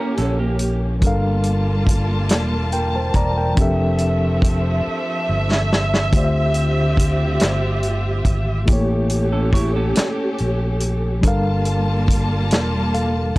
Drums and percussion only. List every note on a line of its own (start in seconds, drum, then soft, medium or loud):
0.17 closed hi-hat soft
0.59 closed hi-hat medium
1.02 kick loud
1.02 closed hi-hat medium
1.43 closed hi-hat medium
1.87 kick medium
1.87 closed hi-hat medium
2.29 snare loud
2.29 closed hi-hat medium
2.72 closed hi-hat soft
3.14 kick medium
3.14 closed hi-hat soft
3.57 kick loud
3.57 closed hi-hat medium
3.98 closed hi-hat soft
4.42 kick medium
4.42 closed hi-hat medium
5.52 snare medium
5.73 snare loud
5.94 snare medium
6.13 kick loud
6.13 closed hi-hat medium
6.54 closed hi-hat medium
6.97 kick medium
6.97 closed hi-hat medium
7.40 snare loud
7.40 closed hi-hat medium
7.83 closed hi-hat soft
8.25 kick medium
8.25 closed hi-hat medium
8.67 kick loud
8.67 closed hi-hat medium
9.10 closed hi-hat medium
9.53 kick medium
9.53 closed hi-hat medium
9.95 snare loud
9.95 closed hi-hat medium
10.38 closed hi-hat soft
10.80 closed hi-hat medium
11.23 kick loud
11.23 closed hi-hat medium
11.65 closed hi-hat soft
12.08 kick medium
12.08 closed hi-hat medium
12.51 snare loud
12.51 closed hi-hat medium
12.94 closed hi-hat soft